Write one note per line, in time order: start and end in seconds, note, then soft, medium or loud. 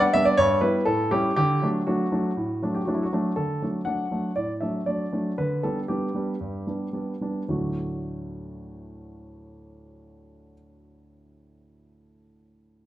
0.00 0.13 F#5 medium
0.14 0.32 G3 medium
0.14 0.31 B3 medium
0.14 0.32 D4 medium
0.14 0.25 E5 loud
0.25 0.37 D5 medium
0.37 0.62 G2 medium
0.37 0.59 C#5 loud
0.61 0.79 G3 medium
0.61 0.80 B3 medium
0.61 0.80 E4 medium
0.61 0.86 B4 medium
0.85 1.10 A2 medium
0.85 1.11 A4 medium
1.11 1.30 G3 soft
1.11 1.30 C#4 medium
1.11 1.30 E4 medium
1.11 1.35 G4 medium
1.36 1.61 D3 medium
1.36 1.67 G4 loud
1.62 1.80 F#3 medium
1.62 1.81 A3 medium
1.62 1.81 D4 medium
1.87 2.05 F#3 soft
1.87 2.05 A3 soft
1.87 2.06 D4 soft
1.87 2.71 F#4 medium
2.12 2.30 F#3 soft
2.12 2.30 A3 soft
2.12 2.30 D4 soft
2.37 2.61 A2 medium
2.62 2.80 F#3 soft
2.62 2.81 A3 soft
2.62 2.81 D4 soft
2.75 2.84 G4 medium
2.85 3.06 F#3 soft
2.85 3.06 A3 soft
2.85 3.06 D4 medium
2.85 2.94 F#4 medium
2.94 3.03 E4 medium
3.03 3.12 F#4 medium
3.13 3.30 F#3 medium
3.13 3.31 A3 medium
3.13 3.31 D4 medium
3.36 3.61 D3 soft
3.36 3.66 A4 medium
3.62 3.80 F#3 soft
3.62 3.80 A3 soft
3.62 3.81 D4 soft
3.85 4.04 F#3 soft
3.85 4.05 A3 soft
3.85 4.05 D4 soft
3.85 4.32 F#5 medium
4.11 4.29 F#3 soft
4.11 4.30 A3 soft
4.11 4.30 D4 soft
4.36 4.61 A2 soft
4.36 4.51 D5 medium
4.61 4.80 F#3 soft
4.61 4.80 A3 soft
4.61 4.80 D4 soft
4.61 4.86 E5 medium
4.86 5.05 F#3 soft
4.86 5.05 A3 soft
4.86 5.05 D4 soft
4.86 5.33 D5 medium
5.13 5.31 F#3 soft
5.13 5.31 A3 soft
5.13 5.31 D4 soft
5.38 5.63 D3 soft
5.38 5.63 B4 medium
5.63 5.82 G3 soft
5.63 5.82 B3 soft
5.63 5.83 D4 soft
5.63 5.79 A4 medium
5.88 6.08 G3 soft
5.88 6.08 B3 soft
5.88 6.08 D4 soft
5.88 7.46 G4 medium
6.15 6.34 G3 soft
6.15 6.34 B3 soft
6.15 6.34 D4 soft
6.41 6.67 G2 soft
6.67 6.87 G3 soft
6.67 6.87 B3 soft
6.67 6.87 D4 soft
6.93 7.14 G3 soft
6.93 7.14 B3 soft
6.93 7.14 D4 soft
7.21 7.42 G3 soft
7.21 7.42 B3 soft
7.21 7.42 D4 soft
7.48 10.53 D2 soft
7.48 10.53 A2 soft
7.48 10.53 F#3 soft
7.48 10.54 A3 soft
7.48 10.54 D4 soft
7.48 10.54 F#4 soft